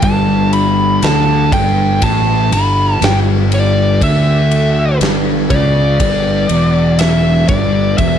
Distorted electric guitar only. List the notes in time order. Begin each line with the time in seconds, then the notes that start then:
0.03 G2
1.02 D3
1.52 G2
2.02 A2
2.51 G2
3.01 G2
4.01 D3
5.01 G2
5.50 C#3
6.00 G2
6.50 E2
7.49 G2
8.00 E2